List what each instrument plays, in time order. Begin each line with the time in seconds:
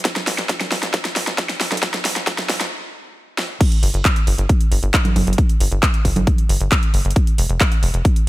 0.05 kick, snare, closed hi-hat
0.16 snare, closed hi-hat, high conga
0.27 analog synth bass A1, snare, open hi-hat
0.38 analog synth bass A1, snare, closed hi-hat
0.49 kick, snare, closed hi-hat
0.61 snare, closed hi-hat, high conga
0.72 analog synth bass A1, snare, open hi-hat
0.83 analog synth bass A1, snare, closed hi-hat
0.94 kick, snare, closed hi-hat
1.05 snare, closed hi-hat
1.16 analog synth bass A1, snare, open hi-hat
1.27 analog synth bass A1, snare, closed hi-hat
1.38 kick, snare, closed hi-hat
1.49 snare, closed hi-hat
1.60 analog synth bass A1, snare, open hi-hat
1.72 analog synth bass A1, snare, closed hi-hat, high conga
1.77 closed hi-hat
1.83 kick, snare, closed hi-hat
1.94 snare, closed hi-hat, high conga
2.05 analog synth bass A1, snare, open hi-hat
2.16 analog synth bass A1, snare, closed hi-hat
2.27 kick, snare, closed hi-hat
2.38 snare, closed hi-hat, high conga
2.49 analog synth bass A1, kick, snare, open hi-hat
2.61 analog synth bass A1, snare, closed hi-hat
3.38 snare
3.61 kick, closed hi-hat, crash
3.72 closed hi-hat
3.83 analog synth bass G1, open hi-hat
3.94 analog synth bass G1, closed hi-hat
4.05 kick, clap, closed hi-hat
4.16 closed hi-hat
4.27 analog synth bass G1, open hi-hat
4.38 analog synth bass G1, closed hi-hat
4.49 kick, closed hi-hat
4.61 closed hi-hat
4.72 analog synth bass G1, open hi-hat
4.83 analog synth bass G1, closed hi-hat
4.94 kick, clap, closed hi-hat
5.05 closed hi-hat, high conga
5.16 analog synth bass G1, open hi-hat, high conga
5.27 analog synth bass G1, closed hi-hat
5.33 closed hi-hat
5.38 kick, closed hi-hat
5.49 closed hi-hat
5.60 analog synth bass G1, open hi-hat
5.72 analog synth bass G1, closed hi-hat
5.83 kick, clap, closed hi-hat
5.94 closed hi-hat
6.05 analog synth bass G1, kick, open hi-hat
6.16 analog synth bass G1, closed hi-hat, high conga
6.27 kick, closed hi-hat
6.38 closed hi-hat
6.49 analog synth bass G1, open hi-hat
6.61 analog synth bass G1, closed hi-hat
6.72 kick, clap, closed hi-hat
6.83 closed hi-hat
6.94 analog synth bass G1, open hi-hat
7.05 analog synth bass G1, closed hi-hat
7.11 closed hi-hat
7.16 kick, closed hi-hat
7.27 closed hi-hat
7.38 analog synth bass F1, open hi-hat
7.49 analog synth bass F1, closed hi-hat
7.60 kick, clap, closed hi-hat
7.72 closed hi-hat
7.83 analog synth bass F1, open hi-hat
7.94 analog synth bass F1, closed hi-hat
8.05 kick, closed hi-hat
8.16 closed hi-hat